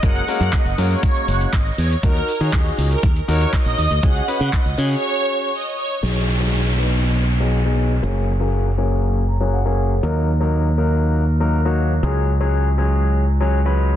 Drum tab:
HH |x-o-x-o-x-o-x-o-|x-o-x-o-x-o-x-o-|x-o-x-o---------|----------------|
SH |xxxxxxxxxxxxxxxx|xxxxxxxxxxxxxxxx|xxxxxxxx--------|----------------|
CP |----x-------x---|----x-------x---|----x-----------|----------------|
BD |o---o---o---o---|o---o---o---o---|o---o-----------|----------------|

HH |----------------|----------------|----------------|
SH |----------------|----------------|----------------|
CP |----------------|----------------|----------------|
BD |----------------|----------------|----------------|